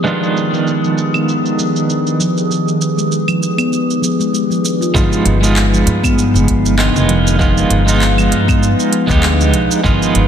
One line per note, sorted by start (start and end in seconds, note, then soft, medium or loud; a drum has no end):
0.00 4.91 D#3 medium
0.00 4.91 G#3 medium
0.00 4.91 G4 medium
0.00 4.91 G#4 medium
0.00 4.91 B4 medium
0.00 4.91 D#6 medium
0.04 4.92 D#3 medium
0.04 0.51 F3 medium
0.04 4.91 B3 medium
0.04 4.92 D4 medium
0.04 4.93 F4 medium
0.04 shaker soft
0.23 shaker soft
0.37 shaker medium
0.53 0.66 G#3 medium
0.53 shaker soft
0.67 shaker soft
0.83 0.91 F3 medium
0.83 shaker soft
0.98 shaker medium
1.14 1.27 B3 medium
1.14 claves medium
1.14 shaker soft
1.29 shaker soft
1.46 shaker soft
1.59 1.74 F3 medium
1.59 shaker medium
1.76 shaker soft
1.89 2.18 D4 medium
1.89 shaker soft
2.07 shaker soft
2.19 2.35 F3 medium
2.19 shaker medium
2.38 shaker soft
2.50 2.96 F3 medium
2.50 shaker soft
2.68 shaker soft
2.81 shaker medium
2.97 3.10 G#3 medium
2.97 shaker soft
3.12 shaker soft
3.28 3.36 F3 medium
3.28 claves medium
3.28 shaker soft
3.43 shaker medium
3.58 3.71 B3 medium
3.58 claves medium
3.58 shaker soft
3.73 shaker soft
3.90 shaker soft
4.02 4.18 F3 medium
4.02 shaker medium
4.19 4.32 G#3 medium
4.19 shaker soft
4.33 4.49 G#3 medium
4.33 shaker soft
4.50 4.63 F3 medium
4.50 shaker soft
4.64 4.80 D4 medium
4.64 shaker medium
4.81 4.93 F4 medium
4.81 shaker soft
4.94 5.08 G1 loud
4.94 5.40 F3 medium
4.94 5.38 G#3 loud
4.94 10.28 G#3 medium
4.94 5.38 B3 medium
4.94 10.28 D#4 medium
4.94 5.39 D#4 medium
4.94 5.39 F4 loud
4.94 10.28 B4 medium
4.94 9.84 F5 medium
4.94 kick loud
4.94 shaker medium
5.13 shaker soft
5.25 5.81 G1 medium
5.25 closed hi-hat medium
5.41 6.74 G#3 medium
5.41 5.55 G#3 medium
5.41 6.75 B3 medium
5.41 6.76 D#4 medium
5.41 shaker medium
5.45 6.77 F4 medium
5.56 clap loud
5.56 shaker medium
5.73 5.81 F3 medium
5.73 shaker soft
5.86 6.36 G2 loud
5.86 closed hi-hat medium
6.03 6.16 B3 loud
6.03 kick loud
6.03 claves medium
6.03 shaker medium
6.18 shaker medium
6.34 6.89 G1 medium
6.34 shaker soft
6.47 6.64 F3 medium
6.47 kick medium
6.47 closed hi-hat medium
6.66 shaker medium
6.78 7.37 D#3 medium
6.78 7.36 G#3 medium
6.78 7.37 B3 medium
6.78 7.37 F4 medium
6.78 clap loud
6.78 shaker medium
6.95 7.65 F1 medium
6.95 shaker soft
7.09 7.25 F3 loud
7.09 closed hi-hat medium
7.27 shaker medium
7.39 7.83 D#3 medium
7.39 7.85 F3 medium
7.39 7.83 G#3 medium
7.39 7.83 B3 medium
7.39 7.84 F4 medium
7.39 kick loud
7.39 shaker medium
7.58 shaker soft
7.70 8.26 G1 medium
7.70 closed hi-hat medium
7.86 9.06 G#3 medium
7.86 8.00 G#3 medium
7.86 9.06 B3 medium
7.86 9.07 D#4 medium
7.86 9.07 F4 loud
7.86 shaker medium
8.01 clap loud
8.01 shaker medium
8.17 8.25 F3 medium
8.17 claves medium
8.17 shaker soft
8.31 8.72 G2 medium
8.31 closed hi-hat medium
8.48 8.61 B3 loud
8.48 kick loud
8.48 claves medium
8.48 shaker medium
8.63 shaker medium
8.80 shaker soft
8.93 9.09 F3 medium
8.93 closed hi-hat medium
9.07 9.53 D2 loud
9.07 9.80 G#3 loud
9.07 9.81 B3 medium
9.07 9.82 D#4 medium
9.07 kick loud
9.07 clap soft
9.07 shaker medium
9.11 9.82 G4 loud
9.23 9.52 D4 medium
9.23 clap loud
9.23 shaker medium
9.41 shaker soft
9.53 9.67 B1 medium
9.53 9.70 F3 loud
9.53 closed hi-hat medium
9.71 shaker medium
9.84 9.97 G1 loud
9.84 10.28 D#3 medium
9.84 10.28 F3 medium
9.84 10.28 G#3 medium
9.84 10.28 B3 medium
9.84 10.28 F4 loud
9.84 10.28 G#5 medium
9.84 kick loud
9.84 shaker medium
10.02 shaker soft
10.15 10.28 G1 medium
10.15 closed hi-hat medium